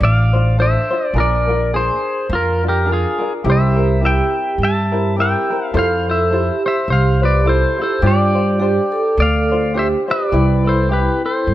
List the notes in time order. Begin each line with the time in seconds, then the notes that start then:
Already playing: D4 F4 A4 C5
0.01 A1 D5
0.05 F5
0.33 D4 F4 C5
0.57 D4 F4 A4 C5
0.62 E5
0.91 D4 F4 C5
1.07 D5
1.14 A#1 D4 F4 G#4 A#4
1.18 A#4 D5
1.48 D4 F4 A#4
1.74 D4 F4 G#4 A#4 C5
2.29 F2 F4
2.35 A#4
2.63 D4 F4 A#4
2.68 G4 A#4
2.85 D4 F4 G#4 A#4
2.92 F4 G#4
3.19 D4 F4 A#4
3.44 C2 C4 E4 G4 A#4
3.50 C5 E5
3.76 C4 E4 A#4
4.01 C4 E4 G4 A#4
4.05 E5 G5
4.58 G2
4.63 E5 A5
4.92 C4 E4 A#4
5.16 C4 E4 G4 A#4
5.20 E5 G5
5.50 C4 E4 A#4
5.66 F5
5.73 F2 E4 F4 A4 C5
5.79 F5
6.08 E4 F4 C5 E5
6.31 E4 F4 G4 A4 C5
6.66 C5 E5
6.88 C2 C5
6.92 F5
7.22 E4 F4 B4 C5 D5
7.44 E4 F4 A4 C5
7.49 C5
7.78 E4 F4 A4 C5
7.83 C5
8.02 G2 D4 F4 G4 C5
8.06 G4 D5
8.35 D4 F4 C5
8.59 D4 F4 G4 C5
8.92 A4
9.17 D2 D5
9.22 F5
9.51 D4 F4 C5
9.74 D4 F4 G4 C5
9.79 E5
10.08 D4 F4 B4 C5 D5
10.32 C2 C4 E4 G4 B4
10.64 C4 E4 A4 B4
10.69 C5
10.89 C4 E4 G4
10.93 B4
11.26 A4 C5
11.47 G2